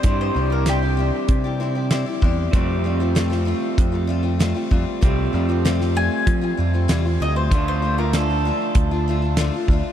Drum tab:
HH |x---x---x---x---|x---x---x---x---|x---x---x---x---|x---x---x---x---|
SD |----o-------o---|----oo------o---|----oo------o---|----o-------o---|
BD |o-------o-----o-|o-------o-----o-|o-------o-------|o-------o-----o-|